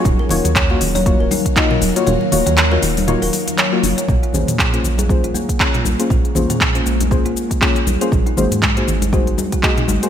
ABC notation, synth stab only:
X:1
M:4/4
L:1/16
Q:"Swing 16ths" 1/4=119
K:Bbm
V:1 name="Synth stab"
z2 [B,EFGd] z2 [B,EFGd] z2 [B,EFGd] z3 [B,EFGe] z2 [B,EFGd] | z2 [B,EFGd] z2 [B,EFGd] z2 [B,EFGd] z4 [B,EFGd]3 | z2 [B,DFAc] z2 [B,DFAc] z2 [B,DFAc] z3 [B,DFAd] z2 [B,DFAc] | z2 [B,DFAc] z2 [B,DFAc] z2 [B,DFAc] z3 [B,DFAd] z2 [B,DFAc] |
z2 [B,EGAc] z2 [B,EGAc] z2 [B,EGAc] z3 [B,EGAe] z2 [B,EGAc] |]